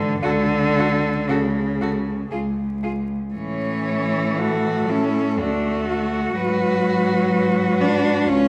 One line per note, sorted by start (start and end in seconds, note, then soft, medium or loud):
0.00 0.21 D3 medium
0.21 1.16 C#2 medium
0.21 1.30 D3 medium
0.21 0.31 F#4 medium
0.21 0.32 A4 medium
0.77 0.87 F#4 medium
0.77 0.85 A4 soft
1.28 2.20 C#2 medium
1.28 2.32 C#3 medium
1.28 1.37 F#4 soft
1.28 1.37 A4 soft
1.81 1.89 F#4 soft
1.81 1.89 A4 soft
2.31 3.22 C#2 soft
2.31 2.40 F4 soft
2.31 2.39 G#4 soft
2.83 2.91 F4 soft
2.83 2.91 G#4 soft
3.34 5.42 A2 medium
3.34 4.91 E3 medium
3.34 4.41 C#4 soft
3.34 4.42 C#5 medium
4.39 4.91 F#4 soft
4.39 5.41 A4 soft
4.89 5.42 C#4 medium
4.89 5.38 E4 soft
5.39 6.36 D2 soft
5.39 6.36 A3 medium
5.39 5.86 D4 soft
5.39 6.37 F#4 medium
5.89 8.30 F#4 soft
6.36 8.29 G#2 medium
6.36 7.82 F#3 medium
6.36 7.30 B4 medium
7.31 8.28 B4 soft
7.80 8.30 D4 medium
8.27 8.48 C#2 medium
8.27 8.48 C#4 medium
8.27 8.48 F4 medium
8.27 8.48 C#5 medium